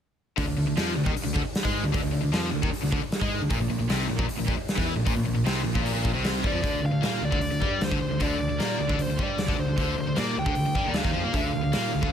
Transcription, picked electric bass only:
0.38 0.47 D2 medium
0.48 0.56 D2 medium
0.57 0.66 D2 medium
0.67 0.76 D2 medium
0.77 0.95 F2 medium
0.98 1.05 D2 medium
1.06 1.15 D#2 loud
1.26 1.35 D2 medium
1.36 1.45 D2 medium
1.45 muted picked electric bass stroke soft
1.65 1.83 G#2 loud
1.84 1.93 D2 medium
1.95 2.03 D2 medium
2.04 2.13 D2 medium
2.14 2.23 D2 medium
2.24 2.33 D2 medium
2.33 2.51 F2 medium
2.54 2.62 D2 medium
2.64 2.72 D#2 loud
2.74 muted picked electric bass stroke soft
2.83 2.92 D2 medium
2.92 3.01 D2 medium
3.03 muted picked electric bass stroke soft
3.22 3.39 G#2 loud
3.41 3.50 D2 medium
3.50 3.59 A#1 medium
3.60 3.69 A#1 medium
3.70 3.79 A#1 medium
3.81 3.89 A#1 medium
3.91 4.08 C2 medium
4.10 4.18 A#1 medium
4.19 4.28 A#1 loud
4.39 4.47 A#1 medium
4.48 4.57 A#1 medium
4.59 muted picked electric bass stroke soft
4.77 4.96 E2 medium
4.97 5.06 A#1 medium
5.07 5.16 A#1 medium
5.17 5.26 A#1 medium
5.27 5.35 A#1 medium
5.36 5.45 A#1 medium
5.46 5.64 C2 medium
5.66 5.75 A#1 medium
5.75 5.84 A#1 loud
5.86 5.94 A#1 medium
5.95 6.04 A#1 loud
6.05 6.14 A#1 medium
6.15 6.42 C2 loud
6.44 6.53 G2 medium
6.55 6.63 F2 medium
6.64 6.82 D2 medium
6.84 6.92 D2 medium
6.93 7.01 D2 medium
7.02 7.20 A#2 medium
7.22 7.31 D2 medium
7.32 7.41 D2 medium
7.42 7.51 D2 medium
7.52 7.61 D2 medium
7.62 7.80 G2 medium
7.81 7.90 D2 medium
7.91 8.00 D2 medium
8.01 8.10 D2 medium
8.11 8.20 D2 medium
8.21 8.38 D2 medium
8.39 8.49 D2 medium
8.51 8.58 D2 medium
8.59 8.77 A#2 medium
8.79 8.88 D2 medium
8.89 8.98 D2 medium
8.98 9.07 D2 medium
9.08 9.17 D2 medium
9.19 9.37 G2 medium
9.38 9.47 D2 medium
9.49 9.57 D2 medium
9.58 9.67 D2 medium
9.68 9.77 D2 medium
9.78 9.96 D2 medium
9.98 10.06 D2 medium
10.07 10.16 D2 medium
10.18 10.35 A#2 medium
10.37 10.46 D2 medium
10.46 10.55 D2 loud
10.58 10.66 D2 medium
10.68 10.74 D2 medium
10.75 10.84 G2 medium
10.87 10.95 D#2 medium
10.97 11.04 D2 medium
11.05 11.14 D#2 medium
11.16 11.24 F2 medium
11.27 11.33 A#2 medium
11.34 11.52 D2 medium
11.56 11.64 D2 medium
11.65 11.73 D2 medium
11.76 11.93 A#2 medium
11.95 12.02 D2 medium
12.03 12.12 D2 medium

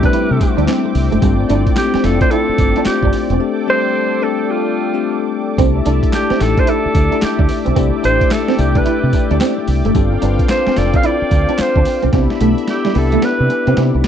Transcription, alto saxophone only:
0.05 0.55 B4 medium
1.78 2.06 G4 medium
2.05 2.21 A4 loud
2.21 2.33 C5 loud
2.31 2.86 A4 loud
2.86 3.28 G4 medium
3.70 4.25 C5 loud
4.24 4.52 A4 loud
4.51 5.32 F4 medium
6.15 6.44 G4 loud
6.42 6.61 A4 loud
6.59 6.71 C5 loud
6.69 7.25 A4 loud
7.24 7.67 G4 medium
8.05 8.34 C5 loud
8.32 8.62 A4 loud
8.60 8.78 G4 medium
8.77 9.31 B4 medium
10.50 10.80 C5 medium
10.78 10.97 D5 loud
10.96 11.07 F5 loud
11.06 11.63 D5 loud
11.62 12.05 C5 medium
12.70 12.99 G4 medium
12.98 13.27 A4 loud
13.25 13.78 B4 loud

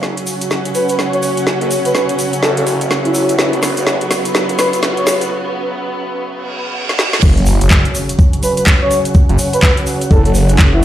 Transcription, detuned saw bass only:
0.00 0.15 F#1 medium
1.61 1.69 F#1 loud
2.43 2.89 F#1 medium
2.91 3.13 F#1 medium
3.15 3.27 F#1 loud
3.29 3.37 A1 medium
3.39 3.75 F#1 loud
3.77 3.99 F#1 loud
7.23 7.59 F#1 loud
7.61 7.83 F#1 loud
9.29 9.37 F#1 loud
10.11 10.57 F#1 loud
10.59 10.81 F#1 loud

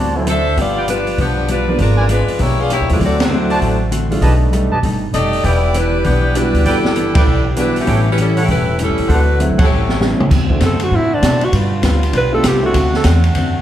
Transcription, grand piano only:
0.16 0.26 F#3 medium
0.16 0.25 A3 medium
0.16 0.26 C4 soft
0.16 0.26 E4 medium
1.68 1.78 F3 medium
1.68 1.78 A#3 medium
1.68 1.78 B3 medium
1.68 1.78 D4 medium
2.89 3.00 F#3 medium
2.89 2.99 A3 medium
2.89 3.00 C4 medium
2.89 3.00 E4 medium
3.30 3.77 F#3 medium
3.30 3.77 A3 medium
3.30 3.77 C4 medium
3.30 3.77 E4 medium
4.11 4.21 G3 medium
4.11 4.21 A3 medium
4.11 4.21 D4 medium
4.11 4.21 F4 medium
4.23 4.51 G3 medium
4.23 4.51 A3 soft
4.23 4.51 D4 soft
4.23 4.52 D#4 medium
4.53 4.70 G3 medium
4.53 4.70 A3 soft
4.53 4.70 D4 soft
4.53 4.70 D#4 medium
6.35 6.81 G3 medium
6.35 6.81 B3 soft
6.35 6.81 D4 medium
6.35 6.81 F#4 medium
7.57 7.88 G3 medium
7.57 7.88 B3 soft
7.57 7.88 D4 medium
7.57 7.88 F#4 medium
9.40 9.58 F#3 medium
9.40 9.58 A3 medium
9.40 9.58 C4 soft
9.40 9.58 E4 medium
10.01 10.18 G3 medium
10.01 10.18 B3 soft
10.01 10.19 C#4 soft
10.01 10.19 E4 medium
10.50 10.61 A3 medium
10.50 10.61 C4 medium
10.50 10.61 D4 medium
10.50 10.61 E4 soft
10.50 10.61 F#4 medium
12.32 12.43 A3 medium
12.32 12.43 B3 medium
12.32 12.43 D4 medium
12.32 12.43 F4 medium
12.32 12.43 G4 medium
12.63 12.73 A3 medium
12.63 12.74 C4 medium
12.63 12.73 D4 medium
12.63 12.74 E4 medium
12.63 12.74 A4 medium

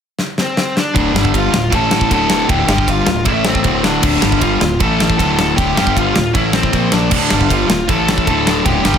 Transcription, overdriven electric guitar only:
0.94 1.12 D2 medium
0.94 1.13 A2 loud
0.94 1.12 D3 loud
1.13 1.51 G2 medium
1.13 1.52 D3 medium
1.13 1.52 G3 loud
1.52 1.68 D2 medium
1.52 1.68 A2 medium
1.70 2.08 A2 loud
1.70 2.09 E3 loud
1.70 2.10 A3 loud
2.09 2.47 D2 medium
2.09 2.47 A2 loud
2.09 2.48 D3 loud
2.48 2.67 D2 loud
2.48 2.68 A2 loud
2.48 2.67 D3 loud
2.67 3.06 G2 loud
2.67 3.06 D3 loud
2.67 3.06 G3 medium
3.06 3.25 D2 medium
3.06 3.25 A2 medium
3.25 3.63 A2 medium
3.25 3.64 E3 loud
3.25 3.64 A3 loud
3.64 4.00 D2 loud
3.64 4.02 A2 loud
3.64 4.02 D3 loud
4.02 4.21 D2 loud
4.02 4.21 A2 loud
4.02 4.21 D3 loud
4.21 4.60 G2 medium
4.21 4.60 D3 loud
4.21 4.60 G3 loud
4.60 4.76 D2 medium
4.60 4.76 A2 medium
4.79 5.17 A2 loud
4.79 5.18 E3 loud
4.79 5.18 A3 loud
5.18 5.54 D2 loud
5.18 5.55 A2 loud
5.18 5.56 D3 loud
5.56 5.74 D2 loud
5.56 5.75 A2 loud
5.56 5.75 D3 loud
5.75 6.13 G2 medium
5.75 6.14 D3 medium
5.75 6.14 G3 loud
6.14 6.30 D2 medium
6.14 6.30 A2 medium
6.33 6.72 A2 loud
6.33 6.72 E3 loud
6.33 6.72 A3 loud
6.72 7.10 A#2 medium
6.72 7.10 F3 loud
6.72 7.11 A#3 loud
7.10 7.29 D2 medium
7.10 7.30 A2 loud
7.10 7.29 D3 loud
7.30 7.68 G2 medium
7.30 7.68 D3 loud
7.30 7.68 G3 loud
7.68 7.84 D2 medium
7.68 7.84 A2 medium
7.88 8.26 A2 medium
7.88 8.26 E3 medium
7.88 8.26 A3 loud
8.26 8.63 D2 loud
8.26 8.64 A2 loud
8.26 8.64 D3 loud
8.64 8.83 D2 loud
8.64 8.83 A2 loud
8.64 8.83 D3 loud
8.83 8.98 G2 medium
8.83 8.98 D3 loud
8.83 8.98 G3 loud

